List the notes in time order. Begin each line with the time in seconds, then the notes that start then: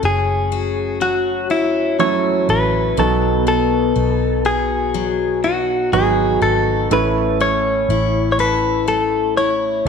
Already playing: F#2 F#3 A3 C#4 F#4
0.03 F#1 C#4 G#4
0.52 F#4
1.01 F#3 F#4
1.50 C#4 E4
1.99 A1 F#3 A3 C#4 E4 F#4 C#5
2.49 A1 C#4 B4
2.97 B1 B2 F#3 B3 D#4 F#4 A4
3.47 B3 A4
3.96 B1 D#4
4.45 F#4 G#4
4.94 F#3
5.44 D#4 F#4
5.93 G#1 F#3 B3 D#4 F#4 G#4
6.41 G#1 D#4 A4
6.91 A1 A2 A3 C#4 E4 A4 B4
7.40 C#4 C#5
7.89 A1 E4
8.32 C#5
8.39 A4 B4
8.88 A3 A4
9.37 E4 C#5
9.85 C#2